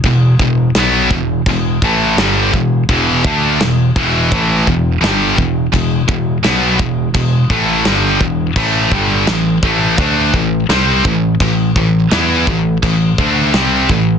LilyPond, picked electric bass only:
\new Staff \with { instrumentName = "Picked electric bass" } { \clef bass \time 4/4 \key e \minor \tempo 4 = 84 e,,8 e,,8 b,,8 e,,8 e,,8 a,,8 g,,8 e,,8 | e,,8 d,8 e,,8 e,,8 a,,8 e,,8 g,,8 e,,8 | e,,8 e,,8 b,,8 e,,8 e,,8 a,,8 g,,8 e,,8 | a,,8 g,,8 a,,8 a,,8 d,8 a,,8 c,8 a,,8 |
a,,8 a,,8 e,8 a,,8 a,,8 d,8 c,8 a,,8 | }